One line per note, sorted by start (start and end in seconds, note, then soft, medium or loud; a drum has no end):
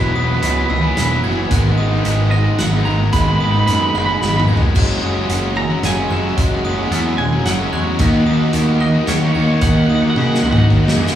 0.00 0.14 E3 medium
0.00 0.16 F#3 loud
0.00 0.16 B3 loud
0.00 0.16 E4 loud
0.00 0.11 B4 medium
0.00 0.16 F#6 loud
0.12 0.36 E1 medium
0.12 0.40 E3 medium
0.12 0.19 B4 medium
0.12 0.70 D#6 medium
0.16 0.30 F#3 medium
0.16 0.30 B3 medium
0.16 0.27 E4 medium
0.16 0.27 B4 medium
0.27 0.42 F#3 medium
0.27 0.42 B3 medium
0.27 0.43 E4 medium
0.27 0.34 B4 medium
0.34 0.42 B4 medium
0.41 0.63 C#2 loud
0.41 0.67 E3 loud
0.41 0.68 F#3 loud
0.41 0.69 B3 loud
0.41 0.68 E4 loud
0.41 0.50 B4 medium
0.41 closed hi-hat medium
0.50 0.57 B4 medium
0.57 0.65 B4 medium
0.66 0.73 B4 medium
0.66 1.24 E6 medium
0.66 muted distorted electric guitar stroke medium
0.70 0.91 C#2 medium
0.70 1.10 E3 medium
0.70 0.84 F#3 medium
0.70 0.84 B3 medium
0.70 0.83 E4 medium
0.70 0.81 B4 medium
0.81 1.12 F#3 medium
0.81 1.10 B3 medium
0.81 1.08 E4 medium
0.81 0.88 B4 medium
0.81 muted distorted electric guitar stroke medium
0.88 0.95 B4 medium
0.96 1.17 E1 loud
0.96 1.03 B4 medium
0.96 snare medium
0.96 closed hi-hat medium
1.05 1.11 B4 medium
1.09 1.23 F#3 medium
1.09 1.23 B3 medium
1.09 1.24 E4 medium
1.09 1.19 B4 medium
1.22 1.45 F#1 medium
1.22 1.48 E3 medium
1.22 1.50 F#3 medium
1.22 1.51 B3 medium
1.22 1.50 E4 medium
1.22 1.51 G#6 medium
1.38 muted distorted electric guitar stroke medium
1.50 1.72 G#1 loud
1.50 2.03 G#2 loud
1.50 1.76 D#3 loud
1.50 1.78 G#3 loud
1.50 1.79 B3 loud
1.50 1.79 D#4 loud
1.50 1.78 F#6 loud
1.50 kick loud
1.50 closed hi-hat medium
1.77 1.99 G#1 medium
1.77 2.02 D#3 medium
1.77 1.92 G#3 medium
1.77 1.91 B3 medium
1.77 1.90 D#4 medium
1.77 2.32 D#6 medium
1.90 2.04 G#3 medium
1.90 2.04 B3 medium
1.90 2.05 D#4 medium
2.03 2.47 G#1 loud
2.03 2.58 G#2 loud
2.03 2.30 D#3 loud
2.03 2.31 G#3 loud
2.03 2.31 B3 loud
2.03 2.31 D#4 loud
2.03 closed hi-hat medium
2.31 2.45 D#3 medium
2.31 2.46 G#3 medium
2.31 2.45 B3 medium
2.31 2.45 D#4 medium
2.31 2.57 D#5 medium
2.31 2.86 F#6 medium
2.31 muted distorted electric guitar stroke soft
2.44 2.74 G#3 medium
2.44 2.72 B3 medium
2.44 2.71 D#4 medium
2.44 muted distorted electric guitar stroke medium
2.59 2.80 G#1 loud
2.59 2.84 F#5 medium
2.59 snare medium
2.59 closed hi-hat medium
2.72 2.86 G#3 medium
2.72 2.86 B3 medium
2.72 2.86 D#4 medium
2.85 3.07 G#1 medium
2.85 3.12 D#3 medium
2.85 3.13 G#3 medium
2.85 3.13 B3 medium
2.85 3.13 D#4 medium
2.85 3.12 A#5 loud
2.85 3.13 G#6 medium
3.00 muted distorted electric guitar stroke medium
3.12 3.34 G#1 loud
3.12 3.66 G#2 loud
3.12 3.38 D#3 loud
3.12 3.40 G#3 loud
3.12 3.40 B3 loud
3.12 3.41 D#4 loud
3.12 3.20 B5 loud
3.12 3.40 F#6 medium
3.12 kick loud
3.12 closed hi-hat medium
3.21 3.27 B5 medium
3.28 3.35 B5 medium
3.36 3.67 D#3 medium
3.36 3.43 B5 medium
3.40 3.61 G#1 medium
3.40 3.55 G#3 medium
3.40 3.54 B3 medium
3.40 3.52 D#4 medium
3.40 3.51 B5 loud
3.40 3.94 D#6 medium
3.51 3.68 B3 medium
3.51 3.68 D#4 medium
3.51 3.59 B5 medium
3.56 3.68 G#3 medium
3.56 3.66 B5 loud
3.66 3.89 F#2 medium
3.66 4.21 G#2 loud
3.66 3.93 D#3 loud
3.66 3.94 G#3 medium
3.66 3.93 B3 loud
3.66 3.93 D#4 loud
3.66 3.74 B5 medium
3.66 closed hi-hat medium
3.75 3.82 B5 loud
3.82 3.89 B5 medium
3.89 3.97 B5 loud
3.94 4.15 F#1 medium
3.94 4.08 D#3 medium
3.94 4.09 G#3 medium
3.94 4.08 B3 medium
3.94 4.07 D#4 medium
3.94 4.49 F#6 medium
3.94 muted distorted electric guitar stroke medium
3.98 4.05 B5 medium
4.05 4.36 G#3 medium
4.05 4.34 B3 medium
4.05 4.33 D#4 medium
4.05 4.13 B5 loud
4.05 muted distorted electric guitar stroke soft
4.14 4.20 B5 medium
4.20 4.43 G#1 loud
4.20 4.28 B5 medium
4.20 snare medium
4.28 4.36 B5 medium
4.34 4.48 G#3 medium
4.34 4.48 B3 medium
4.34 4.49 D#4 medium
4.34 4.45 B5 medium
4.40 mid tom medium
4.47 4.70 F1 medium
4.47 4.73 D#3 medium
4.47 4.75 G#3 medium
4.47 4.74 B3 medium
4.47 4.75 D#4 medium
4.47 4.76 G#6 medium
4.57 floor tom loud
4.63 muted distorted electric guitar stroke medium
4.74 4.96 F#1 loud
4.74 5.02 F#3 loud
4.74 5.03 G#3 loud
4.74 5.03 C#4 loud
4.74 5.04 F#4 loud
4.74 5.02 F#6 loud
4.74 kick loud
4.74 crash loud
5.02 5.24 F#1 medium
5.02 5.29 F#3 medium
5.02 5.18 G#3 medium
5.02 5.17 C#4 medium
5.02 5.16 F#4 medium
5.02 5.56 D#6 medium
5.16 5.30 G#3 medium
5.16 5.30 C#4 medium
5.16 5.31 F#4 medium
5.29 5.71 F#1 loud
5.29 5.57 F#3 medium
5.29 5.56 G#3 loud
5.29 5.58 C#4 loud
5.29 5.58 F#4 loud
5.29 closed hi-hat medium
5.55 6.02 F#3 medium
5.55 5.70 G#3 medium
5.55 5.70 C#4 medium
5.55 5.70 F#4 medium
5.55 5.85 A#5 loud
5.55 6.10 E6 medium
5.55 muted distorted electric guitar stroke soft
5.70 5.97 G#3 medium
5.70 5.97 C#4 medium
5.70 5.96 F#4 medium
5.70 muted distorted electric guitar stroke medium
5.83 6.04 F#1 medium
5.83 6.12 G#5 loud
5.83 snare loud
5.83 closed hi-hat medium
5.97 6.09 G#3 medium
5.97 6.11 C#4 medium
5.97 6.11 F#4 medium
6.09 6.31 F#1 medium
6.09 6.36 F#3 medium
6.09 6.36 G#3 medium
6.09 6.38 C#4 medium
6.09 6.39 F#4 medium
6.09 6.37 E5 medium
6.09 6.36 F#6 medium
6.24 muted distorted electric guitar stroke medium
6.37 6.59 F#1 loud
6.37 6.64 F#3 loud
6.37 6.64 G#3 loud
6.37 6.65 C#4 loud
6.37 6.66 F#4 loud
6.37 6.65 F#6 loud
6.37 kick loud
6.37 closed hi-hat medium
6.64 6.85 F#1 medium
6.64 6.91 F#3 medium
6.64 6.79 G#3 medium
6.64 6.79 C#4 medium
6.64 6.78 F#4 loud
6.64 7.19 D#6 medium
6.78 6.91 G#3 medium
6.78 6.92 C#4 medium
6.78 6.93 F#4 medium
6.91 7.12 E2 loud
6.91 7.19 F#3 medium
6.91 7.18 G#3 loud
6.91 7.20 C#4 loud
6.91 7.20 F#4 loud
6.91 closed hi-hat medium
7.18 7.39 E1 medium
7.18 7.64 F#3 medium
7.18 7.31 G#3 medium
7.18 7.32 C#4 medium
7.18 7.32 F#4 medium
7.18 7.46 G#5 loud
7.18 7.73 E6 medium
7.18 muted distorted electric guitar stroke medium
7.32 7.61 G#3 medium
7.32 7.61 C#4 medium
7.32 7.60 F#4 medium
7.32 muted distorted electric guitar stroke medium
7.45 7.66 F#1 loud
7.45 7.74 F#5 medium
7.45 snare medium
7.45 closed hi-hat medium
7.60 7.72 G#3 medium
7.60 7.74 C#4 medium
7.60 7.75 F#4 medium
7.73 7.94 E2 medium
7.73 8.00 F#3 medium
7.73 7.99 G#3 medium
7.73 8.02 C#4 medium
7.73 8.02 F#4 medium
7.73 7.98 C#5 medium
7.73 7.99 F#6 medium
7.86 muted distorted electric guitar stroke medium
7.99 8.21 D#2 loud
7.99 8.27 D#3 loud
7.99 8.27 A#3 loud
7.99 8.28 D#4 loud
7.99 8.29 F#4 loud
7.99 8.27 F#6 loud
7.99 kick loud
7.99 closed hi-hat medium
8.26 8.47 D#2 medium
8.26 8.53 D#3 medium
8.26 8.41 A#3 medium
8.26 8.40 D#4 medium
8.26 8.39 F#4 medium
8.26 8.81 D#6 medium
8.39 8.54 A#3 medium
8.39 8.55 D#4 medium
8.39 8.55 F#4 medium
8.53 8.95 D#2 loud
8.53 8.80 D#3 medium
8.53 8.81 A#3 loud
8.53 8.81 D#4 loud
8.53 8.81 F#4 loud
8.53 closed hi-hat medium
8.80 9.22 D#3 medium
8.80 8.95 A#3 medium
8.80 8.95 D#4 medium
8.80 8.94 F#4 medium
8.80 9.08 D#5 medium
8.80 9.35 F#6 medium
8.80 muted distorted electric guitar stroke soft
8.94 9.23 A#3 medium
8.94 9.22 D#4 medium
8.94 9.21 F#4 medium
8.94 muted distorted electric guitar stroke medium
9.07 9.29 D#2 loud
9.07 9.16 C#5 medium
9.07 snare medium
9.07 closed hi-hat medium
9.17 9.25 C#5 medium
9.23 9.34 A#3 medium
9.23 9.35 D#4 medium
9.23 9.35 F#4 medium
9.23 9.32 C#5 medium
9.33 9.56 D#2 medium
9.33 9.61 D#3 medium
9.33 9.62 A#3 medium
9.33 9.63 D#4 medium
9.33 9.63 F#4 medium
9.33 9.40 C#5 medium
9.33 9.62 G#6 medium
9.41 9.47 C#5 medium
9.48 9.55 C#5 medium
9.48 muted distorted electric guitar stroke medium
9.56 9.64 C#5 medium
9.61 9.83 D#2 loud
9.61 9.88 D#3 loud
9.61 9.89 A#3 loud
9.61 9.90 D#4 medium
9.61 9.91 F#4 loud
9.61 9.70 F#5 loud
9.61 9.89 F#6 loud
9.61 kick loud
9.61 closed hi-hat medium
9.70 9.77 F#5 medium
9.78 9.86 F#5 medium
9.86 10.10 D#2 medium
9.86 10.15 D#3 medium
9.86 9.94 F#5 medium
9.86 10.43 D#6 medium
9.90 10.04 A#3 medium
9.90 10.02 D#4 medium
9.90 10.01 F#4 medium
9.95 10.02 F#5 loud
10.02 10.16 A#3 medium
10.02 10.17 D#4 medium
10.02 10.17 F#4 medium
10.02 10.09 F#5 medium
10.10 10.18 F#5 loud
10.16 10.37 C#3 loud
10.16 10.42 D#3 medium
10.16 10.43 A#3 loud
10.16 10.43 D#4 medium
10.16 10.43 F#4 loud
10.16 10.26 F#5 medium
10.16 high tom medium
10.26 10.34 F#5 medium
10.34 10.42 F#5 medium
10.34 snare medium
10.43 10.64 C#2 medium
10.43 10.84 D#3 medium
10.43 10.57 A#3 medium
10.43 10.57 D#4 medium
10.43 10.56 F#4 medium
10.43 10.51 F#5 medium
10.43 10.97 F#6 medium
10.43 muted distorted electric guitar stroke soft
10.51 10.58 F#5 medium
10.51 mid tom medium
10.56 10.84 A#3 medium
10.56 10.83 D#4 medium
10.56 10.82 F#4 medium
10.56 10.66 F#5 medium
10.56 muted distorted electric guitar stroke medium
10.70 10.91 D#2 medium
10.70 kick medium
10.83 10.97 A#3 medium
10.83 10.97 D#4 medium
10.83 10.98 F#4 medium
10.88 snare loud
10.97 11.15 F#2 medium
10.97 11.15 D#3 medium
10.97 11.15 A#3 medium
10.97 11.15 D#4 medium
10.97 11.15 F#4 medium
10.97 11.15 G#6 medium
11.07 snare medium
11.11 muted distorted electric guitar stroke medium